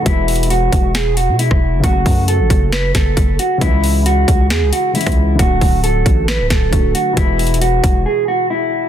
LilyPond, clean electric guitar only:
\new Staff \with { instrumentName = "Clean electric guitar" } { \time 4/4 \key e \mixolydian \tempo 4 = 135 e'4 fis'4 gis'8 fis'8 e'4 | fis'4 a'4 b'8 a'4 fis'8 | e'4 fis'4 gis'8 fis'8 e'4 | fis'4 a'4 b'8 a'4 fis'8 |
e'4 fis'4 gis'8 fis'8 e'4 | }